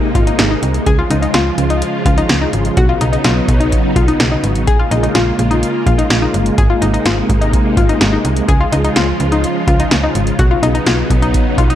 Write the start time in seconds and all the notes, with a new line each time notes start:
Already playing: C3 G#3 A#3 D#4
0.15 G#1 F4, kick, closed hi-hat
0.27 D#4, closed hi-hat
0.39 G#1, snare, closed hi-hat
0.51 D#4
0.63 C2, closed hi-hat
0.74 closed hi-hat
0.86 C#2 C#3 F3 F4 G#4, kick, closed hi-hat
0.99 F4
1.10 C#2 D#4, closed hi-hat
1.22 D#4, closed hi-hat
1.34 C#2 F4, snare, closed hi-hat
1.58 C#2, closed hi-hat
1.70 D#4, closed hi-hat
1.82 closed hi-hat
2.05 C#2 F4, kick, closed hi-hat
2.18 D#4, closed hi-hat
2.29 C#2, snare, closed hi-hat
2.42 D#4
2.53 G#1, closed hi-hat
2.65 closed hi-hat
2.77 B1 F#3 B3 D#4 F#4, kick, closed hi-hat
2.89 F4
3.01 B1 D#4, closed hi-hat
3.13 D#4, closed hi-hat
3.24 B1 F4, snare, closed hi-hat
3.48 B1, kick, closed hi-hat
3.60 D#4, closed hi-hat
3.72 kick, closed hi-hat
3.96 B1 F4, kick, closed hi-hat
4.08 D#4, closed hi-hat
4.20 B1, snare, closed hi-hat
4.32 D#4
4.44 G#1, closed hi-hat
4.55 closed hi-hat
4.67 A#1 G#3 A#3 F4 G#4, kick, closed hi-hat
4.79 F4
4.91 A#1 D#4, closed hi-hat
5.03 D#4, closed hi-hat
5.15 A#1 F4, snare, closed hi-hat
5.39 A#1, closed hi-hat
5.51 D#4, closed hi-hat
5.63 closed hi-hat
5.86 A#1 F4, kick, closed hi-hat
5.98 D#4, closed hi-hat
6.10 A#1, snare, closed hi-hat
6.22 D#4
6.34 G1, closed hi-hat
6.46 closed hi-hat
6.58 G#1 C3 A#3 D#4 G#4, kick, closed hi-hat
6.70 F4
6.82 G#1 D#4, closed hi-hat
6.94 D#4, closed hi-hat
7.05 G#1 F4, snare, closed hi-hat
7.29 G#1, kick, closed hi-hat
7.41 D#4, closed hi-hat
7.53 kick, closed hi-hat
7.77 G#1 F4, kick, closed hi-hat
7.89 D#4, closed hi-hat
8.01 G#1, snare, closed hi-hat
8.13 D#4
8.25 C2, closed hi-hat
8.36 closed hi-hat
8.48 C#2 C#3 F3 F4 G#4, kick, closed hi-hat
8.60 F4
8.72 C#2 D#4, closed hi-hat
8.84 D#4, closed hi-hat
8.96 C#2 F4, snare, closed hi-hat
9.20 C#2, closed hi-hat
9.32 D#4, closed hi-hat
9.44 closed hi-hat
9.67 C#2 F4, kick, closed hi-hat
9.80 D#4, closed hi-hat
9.91 C#2, snare, closed hi-hat
10.04 D#4
10.15 G#1, closed hi-hat
10.27 closed hi-hat
10.39 B1 F#3 B3 D#4 F#4, kick, closed hi-hat
10.51 F4
10.63 B1 D#4, closed hi-hat
10.75 D#4, closed hi-hat
10.86 B1 F4, snare, closed hi-hat
11.10 B1, kick, closed hi-hat
11.22 D#4, closed hi-hat
11.34 kick, closed hi-hat
11.58 B1 F4, kick, closed hi-hat
11.70 D#4, closed hi-hat